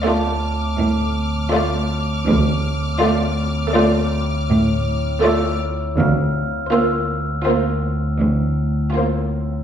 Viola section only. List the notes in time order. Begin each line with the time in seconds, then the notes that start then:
0.05 A3
1.53 A3
3.01 A3
3.74 A3
5.23 A3
6.71 A#3
7.47 A#3
8.95 A#3